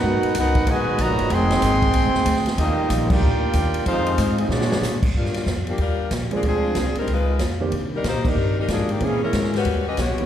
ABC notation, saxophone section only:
X:1
M:4/4
L:1/16
Q:"Swing" 1/4=187
K:Eb
V:1 name="Saxophone section"
z16 | z16 | z16 | z16 |
[G,B,DF]4 z2 [F,B,DG]2 [G,DFB]4 z2 [F,B,DA]2 | [F,CDA]6 [G,CEB]2 [A,EF_c]4 z4 | z2 [G,DEB]2 [B,EGc]2 [G,DEB]4 [G,DEB]2 [F,B,DA]2 [E,B,DG]2 | [_F,B,_DA]2 [A,D_FB]4 [G,D_G_c]4 [D=G=Be]2 [=B,^FG_d]3 z |]